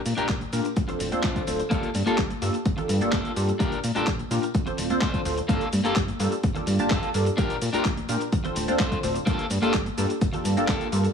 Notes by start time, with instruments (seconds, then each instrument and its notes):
0.06 analog synth bass A#2, open hi-hat, tambourine, shaker
0.17 analog synth bass A#1, analog polysynth A#3 D4 F4 G4 A#4, clean electric guitar D4 G4 A#4, closed hi-hat, tambourine, high conga, shaker
0.29 analog synth bass A#1, kick, clap, closed hi-hat, shaker
0.40 muted clean electric guitar stroke, closed hi-hat, tambourine, high conga, shaker
0.52 analog synth bass A#2, analog polysynth A#3 D4 F4 G4 A#4, open hi-hat, tambourine, shaker
0.64 muted clean electric guitar stroke, closed hi-hat, tambourine, shaker
0.76 analog synth bass D2, kick, closed hi-hat, tambourine, shaker
0.88 analog synth bass D1, analog polysynth C4 D4 F4 A4 C5, muted clean electric guitar stroke, closed hi-hat, tambourine, low conga, shaker
0.99 analog synth bass D1, muted clean electric guitar stroke, open hi-hat, tambourine, shaker
1.12 analog synth bass D2, analog polysynth C4 D4 F4 A4 C5, closed hi-hat, tambourine, high conga, shaker
1.23 analog synth bass D2, clean electric guitar D4 F4 C5, kick, clap, closed hi-hat, shaker
1.36 kick, closed hi-hat, tambourine, shaker
1.47 analog synth bass D1, analog polysynth C4 D4 F4 A4 C5, open hi-hat, tambourine, shaker
1.58 muted clean electric guitar stroke, closed hi-hat, tambourine, shaker
1.70 analog synth bass G1, clean electric guitar A#3 F4 A4, analog polysynth A#3 D4 F4 G4 A4, kick, closed hi-hat, tambourine, shaker
1.83 closed hi-hat, tambourine, shaker
1.94 analog synth bass G2, open hi-hat, tambourine, high conga, shaker
2.06 analog synth bass G1, clean electric guitar A#3 F4 A4, analog polysynth A#3 D4 F4 G4 A4, closed hi-hat, tambourine, high conga, shaker
2.18 analog synth bass G1, kick, clap, closed hi-hat, shaker
2.30 muted clean electric guitar stroke, closed hi-hat, tambourine, high conga, shaker
2.42 analog synth bass G2, analog polysynth A#3 D4 F4 G4 A4, open hi-hat, tambourine, shaker
2.53 muted clean electric guitar stroke, closed hi-hat, tambourine, shaker
2.65 analog synth bass G1, kick, closed hi-hat, tambourine, shaker
2.77 analog polysynth A#3 D4 F4 G4 A4, muted clean electric guitar stroke, closed hi-hat, tambourine, low conga, shaker
2.88 analog synth bass G2, muted clean electric guitar stroke, open hi-hat, tambourine, shaker
3.01 analog synth bass G1, analog polysynth A#3 D4 F4 G4 A4, closed hi-hat, tambourine, shaker
3.12 analog synth bass G1, clean electric guitar A#3 F4 A4, kick, clap, closed hi-hat, shaker
3.25 closed hi-hat, tambourine, shaker
3.36 analog synth bass G2, analog polysynth A#3 D4 F4 G4 A4, open hi-hat, tambourine, shaker
3.48 muted clean electric guitar stroke, closed hi-hat, tambourine, shaker
3.59 analog synth bass A#1, analog polysynth A#3 D4 F4 G4 A#4, clean electric guitar D4 G4 A#4, kick, closed hi-hat, tambourine, shaker
3.72 analog synth bass A#2, closed hi-hat, tambourine, shaker
3.83 analog synth bass A#2, open hi-hat, tambourine, shaker
3.95 analog synth bass A#1, analog polysynth A#3 D4 F4 G4 A#4, clean electric guitar D4 G4 A4, closed hi-hat, tambourine, high conga, shaker
4.07 analog synth bass A#1, kick, clap, closed hi-hat, tambourine, shaker
4.19 muted clean electric guitar stroke, closed hi-hat, tambourine, high conga, shaker
4.31 analog synth bass A#2, analog polysynth A#3 D4 F4 G4 A#4, open hi-hat, tambourine, shaker
4.42 muted clean electric guitar stroke, closed hi-hat, tambourine, shaker
4.54 analog synth bass D2, kick, closed hi-hat, tambourine, shaker
4.66 analog synth bass D1, analog polysynth C4 D4 F4 A4 C5, muted clean electric guitar stroke, closed hi-hat, tambourine, low conga, shaker
4.77 analog synth bass D1, muted clean electric guitar stroke, open hi-hat, tambourine, shaker
4.90 analog synth bass D2, analog polysynth C4 D4 F4 A4 C5, closed hi-hat, tambourine, high conga, shaker
5.01 analog synth bass D2, clean electric guitar D4 F4 C5, kick, clap, closed hi-hat, shaker
5.14 kick, closed hi-hat, tambourine, shaker
5.25 analog synth bass D1, analog polysynth C4 D4 F4 A4 C5, open hi-hat, tambourine, shaker
5.37 muted clean electric guitar stroke, closed hi-hat, tambourine, shaker
5.48 analog synth bass G1, clean electric guitar A#3 F4 A4, analog polysynth A#3 D4 F4 G4 A4, kick, closed hi-hat, tambourine, shaker
5.61 closed hi-hat, tambourine, shaker
5.73 analog synth bass G2, open hi-hat, tambourine, high conga, shaker
5.84 analog synth bass G1, clean electric guitar A#3 F4 A4, analog polysynth A#3 D4 F4 G4 A4, closed hi-hat, tambourine, high conga, shaker
5.96 analog synth bass G1, kick, clap, closed hi-hat, tambourine, shaker
6.07 muted clean electric guitar stroke, closed hi-hat, tambourine, high conga, shaker
6.19 analog synth bass G2, analog polysynth A#3 D4 F4 G4 A4, open hi-hat, tambourine, shaker
6.31 muted clean electric guitar stroke, closed hi-hat, tambourine, shaker
6.43 analog synth bass G1, kick, closed hi-hat, tambourine, shaker
6.54 analog polysynth A#3 D4 F4 G4 A4, muted clean electric guitar stroke, closed hi-hat, tambourine, low conga, shaker
6.66 analog synth bass G2, muted clean electric guitar stroke, open hi-hat, tambourine, shaker
6.79 analog synth bass G1, analog polysynth A#3 D4 F4 G4 A5, closed hi-hat, tambourine, shaker
6.90 analog synth bass G1, clean electric guitar A#3 F4 A4, kick, clap, closed hi-hat, shaker
7.02 closed hi-hat, tambourine, shaker
7.14 analog synth bass G2, analog polysynth A#3 D4 F4 G4 A4, open hi-hat, tambourine, shaker
7.25 muted clean electric guitar stroke, closed hi-hat, tambourine, shaker
7.37 analog synth bass A#1, analog polysynth A#3 D4 F4 G4 A#4, clean electric guitar D4 G4 A#4, kick, closed hi-hat, tambourine, shaker
7.50 analog synth bass A#2, closed hi-hat, shaker
7.62 analog synth bass A#2, open hi-hat, tambourine, shaker
7.73 analog synth bass A#1, analog polysynth A#3 D4 F4 G4 A#4, clean electric guitar D4 G4 A#4, closed hi-hat, tambourine, high conga, shaker
7.85 analog synth bass A#1, kick, clap, closed hi-hat, tambourine, shaker
7.96 muted clean electric guitar stroke, closed hi-hat, tambourine, high conga, shaker
8.09 analog synth bass A#2, analog polysynth A#3 D4 F4 G4 A#4, open hi-hat, tambourine, shaker
8.20 muted clean electric guitar stroke, closed hi-hat, tambourine, shaker
8.32 analog synth bass D2, kick, closed hi-hat, tambourine, shaker
8.44 analog synth bass D1, analog polysynth C4 D4 F4 A4 C5, muted clean electric guitar stroke, closed hi-hat, tambourine, low conga, shaker
8.55 analog synth bass D1, muted clean electric guitar stroke, open hi-hat, tambourine, shaker
8.68 analog synth bass D2, analog polysynth C4 D4 F4 A4 C5, closed hi-hat, tambourine, high conga, shaker
8.79 analog synth bass D2, clean electric guitar D4 F4 C5, kick, clap, closed hi-hat, shaker
8.91 kick, closed hi-hat, tambourine, shaker
9.03 analog synth bass D1, analog polysynth C4 D4 F4 A4 C5, open hi-hat, tambourine, shaker
9.15 muted clean electric guitar stroke, closed hi-hat, tambourine, shaker
9.26 analog synth bass G1, clean electric guitar A#3 F4 A4, analog polysynth A#3 D4 F4 G4 A4, kick, closed hi-hat, tambourine, shaker
9.39 closed hi-hat, shaker
9.50 analog synth bass G2, open hi-hat, tambourine, high conga, shaker
9.62 analog synth bass G1, clean electric guitar A#3 F4 A4, analog polysynth A#3 D4 F4 G4 A4, closed hi-hat, tambourine, high conga, shaker
9.74 analog synth bass G1, kick, clap, closed hi-hat, tambourine, shaker
9.85 muted clean electric guitar stroke, closed hi-hat, tambourine, high conga, shaker
9.97 analog synth bass G2, analog polysynth A#3 D4 F4 G4 A4, open hi-hat, tambourine, shaker
10.09 muted clean electric guitar stroke, closed hi-hat, tambourine, shaker
10.21 analog synth bass G1, kick, closed hi-hat, tambourine, shaker
10.33 analog polysynth A#3 D4 F4 G4 A4, muted clean electric guitar stroke, closed hi-hat, tambourine, low conga, shaker
10.44 analog synth bass G2, muted clean electric guitar stroke, open hi-hat, tambourine, shaker
10.57 analog synth bass G1, analog polysynth A#3 D4 F4 G4 A4, closed hi-hat, tambourine, shaker
10.68 analog synth bass G1, clean electric guitar A#3 F4 A4, kick, clap, closed hi-hat, tambourine, shaker
10.81 closed hi-hat, tambourine, shaker
10.92 analog synth bass G2, analog polysynth A#3 D4 F4 G4 A4, open hi-hat, tambourine, shaker
11.04 muted clean electric guitar stroke, closed hi-hat, tambourine, shaker